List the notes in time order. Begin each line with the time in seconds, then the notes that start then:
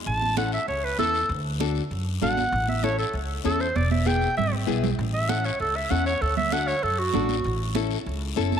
0.06 A1 A5, high conga, long guiro
0.22 high conga
0.37 C#4 E4 A4 F#5, high conga, short guiro
0.52 E5, short guiro
0.68 C#2 C#5, high conga, long guiro
0.84 B4
0.98 E2 C#4 E4 A4, high conga, short guiro
1.14 short guiro
1.29 D2, high conga, long guiro
1.60 D4 F#4 A4, high conga, short guiro
1.75 short guiro
1.91 F#2, high conga, long guiro
2.22 A1 D4 F#4 A4 F#5, high conga, low conga, short guiro
2.37 high conga, short guiro
2.52 A1, high conga, long guiro
2.68 E5, high conga
2.83 C#4 E4 A4 C#5, high conga, short guiro
2.99 A4, short guiro
3.14 C#2, high conga, long guiro
3.44 E2 C#4 E4 A4, high conga, short guiro
3.60 C5, short guiro
3.76 E1 D5, high conga, long guiro
3.91 E5, high conga
4.06 B3 E4 G#4 G5, high conga, short guiro
4.21 short guiro
4.37 G#1 E5, low conga, long guiro
4.53 low conga
4.67 B1 B3 E4 G#4, low conga, short guiro
4.84 low conga, short guiro
4.99 A1, high conga, long guiro
5.14 E5
5.28 C#4 E4 A4 F#5, high conga, short guiro
5.45 C#5, short guiro
5.60 C#2 A4, high conga, long guiro
5.76 E5
5.91 E2 C#4 E4 A4 F#5, high conga, short guiro
6.06 C#5, short guiro
6.21 D2 A4, high conga, long guiro
6.37 E5, high conga, low conga
6.52 D4 F#4 A4 F#5, high conga, short guiro
6.67 C#5, short guiro
6.83 F#2 A4, high conga, long guiro
6.99 F#4
7.14 A1 D4 F#4 A4, high conga, low conga, short guiro
7.29 high conga, short guiro
7.44 A1, high conga, long guiro
7.75 C#4 E4 A4, high conga, short guiro
7.91 short guiro
8.06 C#2, high conga, long guiro
8.36 F#1 C#4 E4 A4, high conga, short guiro
8.52 high conga, short guiro